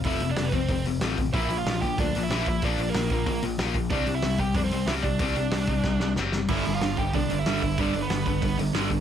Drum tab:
CC |--------|--------|--------|--------|
HH |oooooooo|oooooooo|oooooooo|oooooooo|
SD |--o---o-|--o---o-|--o---o-|--o---o-|
BD |o--oo--o|o--oo--o|o--oo--o|o--oo--o|

CC |--------|x-------|--------|
HH |oooo----|oooooooo|oooooooo|
SD |--o-oooo|--o---o-|--o---o-|
BD |o--oo---|o--oo--o|o--oo--o|